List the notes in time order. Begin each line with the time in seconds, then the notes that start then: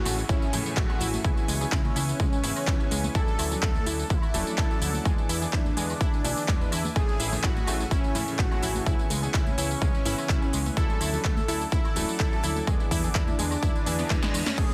Already playing: A3 F#4 E5 G#5 C#6, downlifter
0.05 A1 A2 E3 A3 C#4 G#4, open hi-hat, tambourine, high woodblock
0.18 tambourine
0.29 A1 C#4 E4, kick, tambourine
0.42 tambourine
0.53 A2 E3 A3 C#4 E4 G#4, open hi-hat, tambourine, high conga, low conga, high woodblock
0.66 tambourine
0.77 A1 A3 F#4, kick, clap, tambourine
0.89 A2 E3 A3 C#4 G#4, tambourine, high woodblock
1.00 A1 E4, open hi-hat, tambourine, low conga
1.14 tambourine, high conga
1.24 C#2 E3 B3 C#4 E4 G#4 B4, kick, tambourine
1.36 tambourine, high woodblock
1.48 C#2 G#3, open hi-hat, tambourine
1.61 E3 B3 C#4 G#4, tambourine
1.72 C#2 C#4 E4, kick, clap, tambourine, high woodblock
1.85 tambourine, high conga
1.96 C#2 E3 B3 C#4 E4 G#4, open hi-hat, tambourine
2.09 tambourine
2.19 C#2 G#3, kick, tambourine, high woodblock
2.33 tambourine
2.44 G#1 E3 B3 C#4 E4 G#4, open hi-hat, tambourine, high conga
2.56 tambourine, high woodblock
2.67 C#2 E4, kick, clap, tambourine
2.80 E3 B3 C#4 G#4, tambourine
2.91 C#2 G#3, open hi-hat, tambourine
3.04 tambourine, high conga, high woodblock
3.15 D2 F#3 C#4 D4 E4 A4 F#5 A5 D6, kick, tambourine
3.28 tambourine
3.39 D2 E4, open hi-hat, tambourine, high woodblock
3.51 F#3 C#4 D4 A4, tambourine, low conga
3.63 D2 A3 A4, kick, clap, tambourine
3.75 tambourine, high conga
3.86 D2 F#3 C#4 D4 E4 A4, open hi-hat, tambourine, high woodblock
3.99 tambourine
4.10 D2 E4, kick, tambourine
4.22 tambourine, high woodblock
4.34 D1 F#3 A3 C#4 D4 A4, open hi-hat, tambourine, high conga, low conga
4.47 tambourine
4.58 D2 E4 A4, kick, clap, tambourine
4.70 F#3 C#4 D4 A4, tambourine, high woodblock
4.82 D2 E4, open hi-hat, tambourine, low conga
4.94 tambourine, high conga
5.05 E2 E3 G#3 B3 D4 G#4 B4 E5 G#5 D6, kick, tambourine, high woodblock
5.18 tambourine
5.29 E2 E4, open hi-hat, tambourine
5.42 E3 B3 D4 G#4, tambourine
5.53 E2 D4 E4, kick, clap, tambourine, high woodblock
5.65 tambourine, high conga
5.77 E2 E3 G#3 B3 D4 G#4, open hi-hat, tambourine
5.90 tambourine, high woodblock
6.01 E2 E4, kick, tambourine
6.14 tambourine
6.24 B1 E3 B3 D4 E4 G#4, open hi-hat, tambourine, high conga
6.37 tambourine, high woodblock
6.48 E1 G#3, kick, clap, tambourine
6.61 E3 B3 D4 B4, tambourine
6.72 E2 E4, open hi-hat, tambourine, high woodblock
6.85 tambourine, high conga
6.96 A1 A2 E3 A3 C#4 G#4 C#6, kick, tambourine
7.09 tambourine
7.20 A1 E4, open hi-hat, tambourine
7.32 A2 E3 A3 C#4 G#4, tambourine, low conga, high woodblock
7.44 A1 E4 F#4, kick, clap, tambourine
7.56 tambourine, high conga
7.67 A1 A2 E3 A3 C#4 G#4, open hi-hat, tambourine, high woodblock
7.80 tambourine
7.91 A1 C#4 E4, kick, tambourine
8.04 tambourine
8.15 A2 E3 A3 C#4 E4 G#4, open hi-hat, tambourine, high conga, low conga, high woodblock
8.28 tambourine
8.39 A1 A3 F#4, kick, clap, tambourine
8.51 A2 E3 A3 C#4 G#4, tambourine, high woodblock
8.62 A1 E4, open hi-hat, tambourine, low conga
8.75 tambourine, high conga
8.86 C#2 E3 B3 C#4 E4 G#4 B4 E5, kick, tambourine
8.99 tambourine, high woodblock
9.10 C#2 G#3, open hi-hat, tambourine
9.23 E3 B3 C#4 G#4, tambourine
9.34 C#2 C#4 E4, kick, clap, tambourine, high woodblock
9.47 tambourine, high conga
9.58 C#2 E3 B3 C#4 E4 G#4, open hi-hat, tambourine
9.71 tambourine
9.82 C#2 G#3, kick, tambourine, high woodblock
9.95 tambourine
10.05 G#1 E3 B3 C#4 E4 G#4, open hi-hat, tambourine, high conga
10.18 tambourine, high woodblock
10.29 C#2 E4, kick, clap, tambourine
10.42 E3 B3 C#4 G#4, tambourine
10.53 C#2 G#3, open hi-hat, tambourine
10.65 tambourine, high conga, high woodblock
10.77 D2 F#3 C#4 D4 E4 A4 F#5 A5 D6, kick, tambourine
10.90 tambourine
11.01 D2 E4, open hi-hat, tambourine, high woodblock
11.13 F#3 C#4 D4 A4, tambourine, low conga
11.24 D2 A3 A4, kick, clap, tambourine
11.37 tambourine, high conga
11.48 D2 F#3 C#4 D4 E4 A4, open hi-hat, tambourine, high woodblock
11.61 tambourine
11.72 D2 E4, kick, tambourine
11.85 tambourine, high woodblock
11.96 D1 F#3 A3 C#4 D4 A4, open hi-hat, tambourine, high conga, low conga
12.09 tambourine
12.20 D2 E4 A4, kick, clap, tambourine
12.32 F#3 C#4 D4 A4, tambourine, high woodblock
12.43 D2 E4, open hi-hat, tambourine, low conga
12.56 tambourine, high conga
12.67 E2 E3 G#3 B3 D4 G#4 B4 E5 G#5, kick, tambourine, high woodblock
12.80 tambourine
12.91 E2 E4, kick, open hi-hat, tambourine
13.04 E3 B3 D4 G#4, tambourine, low conga
13.15 E2 D4 E4, kick, clap, tambourine
13.28 tambourine, high conga
13.39 E2 E3 G#3 B3 D4 G#4, open hi-hat, tambourine
13.51 tambourine, high woodblock
13.63 E2 E4, kick, tambourine, reverse cymbal
13.76 tambourine
13.86 E2 E3 B3 D4 E4 G#4, open hi-hat, tambourine, high conga
13.99 B3, tambourine, high woodblock
14.10 E2 E4, kick, snare, clap, tambourine
14.23 E3 G#3 B3 D4 B4, snare, tambourine
14.34 E2 G#3, open hi-hat, tambourine, high woodblock
14.46 C#4, snare, tambourine, high conga
14.58 A1 A2 E3 A3 C#4 G#4 C#6, kick, ride, tambourine, crash
14.71 tambourine